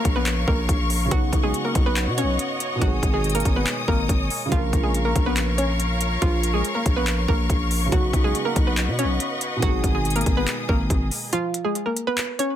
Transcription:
Already playing: C#3 F3 A#3 F4 A#4 C#5 F5 C#6, downlifter
0.05 A#1, kick, closed hi-hat
0.16 B3 B4
0.26 clap, closed hi-hat
0.48 A#1 A#3 A#4, kick
0.69 A#1, kick, closed hi-hat
0.90 open hi-hat
1.05 C#3 F#3
1.11 B1 F#3 B3 D#4 F#4 C#5 D#5 F#5, kick, closed hi-hat
1.17 F#4
1.33 B1, kick, closed hi-hat
1.43 G#3 G#4
1.54 closed hi-hat
1.65 A#3 A#4
1.75 B1, kick, closed hi-hat
1.86 B3 B4
1.96 clap, closed hi-hat
2.07 B2
2.18 C#4 C#5, closed hi-hat
2.23 B1
2.39 closed hi-hat
2.60 closed hi-hat
2.75 B2 D#3
2.81 G#1 F#3 G#3 D#4 F#4 G#5 D#6, kick, closed hi-hat
2.87 G#4
3.03 G#1, kick, closed hi-hat
3.14 G#3 G#4
3.24 closed hi-hat
3.30 closed hi-hat
3.35 A#3 A#4, closed hi-hat
3.40 closed hi-hat
3.45 G#1, kick, closed hi-hat
3.56 B3 B4
3.67 clap, closed hi-hat
3.88 G#1 A#3 A#4, kick
4.09 G#1, kick, closed hi-hat
4.30 open hi-hat
4.46 C#3 F3
4.52 A#1 F3 A#3 F4 A#4 C#5 F5 C#6, kick, closed hi-hat
4.58 A#4
4.73 A#1, kick, closed hi-hat
4.84 G#3 G#4
4.94 closed hi-hat
5.05 A#3 A#4
5.16 A#1, kick, closed hi-hat
5.26 B3 B4
5.37 clap, closed hi-hat
5.58 C#4 C#5, closed hi-hat
5.80 closed hi-hat
6.01 closed hi-hat
6.22 A#1 F3 F4, kick, closed hi-hat
6.43 closed hi-hat
6.54 G#3 G#4
6.65 closed hi-hat
6.75 A#3 A#4
6.86 A#1, kick, closed hi-hat
6.96 B3 B4
7.07 clap, closed hi-hat
7.28 A#1 A#3 A#4, kick
7.50 A#1, kick, closed hi-hat
7.71 open hi-hat
7.86 C#3 F#3
7.92 B1 F#3 B3 D#4 F#4 B4 D#5 F#5, kick, closed hi-hat
7.98 F#4
8.13 B1, kick, closed hi-hat
8.24 G#3 G#4
8.35 closed hi-hat
8.45 A#3 A#4
8.56 B1, kick, closed hi-hat
8.67 B3 B4
8.77 clap, closed hi-hat
8.88 B2
8.99 C#4 C#5, closed hi-hat
9.04 B1
9.20 closed hi-hat
9.41 closed hi-hat
9.56 B2 D#3
9.62 G#1 F#3 G#3 D#4 F#4 G#4 G#5 D#6, kick, closed hi-hat
9.68 G#4
9.84 G#1, kick, closed hi-hat
9.95 G#3 G#4
10.05 closed hi-hat
10.10 closed hi-hat
10.16 A#3 A#4, closed hi-hat
10.21 closed hi-hat
10.26 G#1, kick, closed hi-hat
10.37 B3 B4
10.47 clap, closed hi-hat
10.69 G#1 A#3 A#4, kick
10.90 G#1, kick, closed hi-hat
11.11 open hi-hat
11.33 F3 F4, closed hi-hat
11.54 closed hi-hat
11.65 G#3 G#4
11.75 closed hi-hat
11.86 A#3 A#4
11.97 closed hi-hat
12.07 B3 B4
12.18 clap, closed hi-hat
12.39 C#4 C#5, closed hi-hat

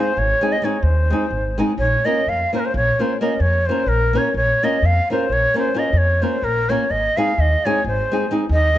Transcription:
Already playing: C4 D#4 C5
0.00 G#4
0.17 G#1 C#5
0.41 G#3 C4 D#4 G#4
0.52 D#5
0.62 G#3 C4 D#4 G#4 C#5
0.83 D#2 C5
1.10 G#3 C4 D#4 G#4
1.31 G#1
1.58 G#3 C4 D#4 G#4
1.78 A#1 C#5
2.05 A#3 C#4 F4 A#4 D#5
2.27 F2 F5
2.53 A#3 C#4 F4 A#4 C5
2.59 A#4
2.65 C5
2.74 A#1 C#5
2.99 A#3 C#4 F4 A#4 C5
3.21 A#3 C#4 F4 A#4 D#5
3.40 F2 C#5
3.66 A#3 C#4 F4 C5
3.71 A#4
3.86 A#1 A#4
4.13 A#3 C#4 F4 A#4
4.17 C#5
4.34 A#1 C#5
4.63 A#3 C#4 F4 A#4 D#5
4.82 F2 F5
5.10 A#3 C#4 F4 A#4 C5
5.29 A#1 C#5
5.54 A#3 C#4 F4 A#4
5.58 C5
5.74 A#3 C#4 F4 A#4
5.79 D#5
5.93 F2
5.98 C#5
6.22 A#3 C#4 F4 A#4 C5
6.42 A#1 A#4
6.69 A#3 C#4 F4 A#4 C#5
6.90 G#1 D#5
7.17 G#3 C4 D#4 G#4 F5
7.38 D#2 D#5
7.65 G#3 C4 D#4 G#4 C#5
7.84 G#1 C5
8.12 G#3 C4 D#4 G#4
8.31 G#3 C4 D#4 G#4
8.49 D#2 D#5
8.75 G#3

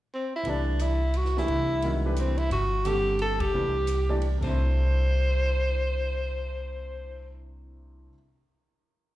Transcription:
0.14 C4
0.36 E4
0.43 C2 E3 A3 D4 G4 B4, ride
0.50 D4
0.79 E4, hi-hat pedal, ride
1.14 F#4, ride
1.25 snare
1.37 E3 A3 D4 E4 G4 B4, snare
1.48 C2, ride
1.82 D#3 G#3 C#4 F#4 A#4, ride
2.05 E3 A3 D4 G4 B4
2.16 C4, hi-hat pedal, ride
2.38 E4, ride
2.51 G1 F#4, ride
2.85 D3 G3 C4 G4 A4 F#5, hi-hat pedal, ride
3.19 A4, ride
3.40 G4, kick, ride
3.53 C2 E3 A3 D4 G4 B4
3.87 hi-hat pedal, ride
4.09 E3 A3 D4 G4 D5
4.22 ride
4.38 C2 C3 A3
4.42 D4 C5, kick, crash
4.47 E4 C5

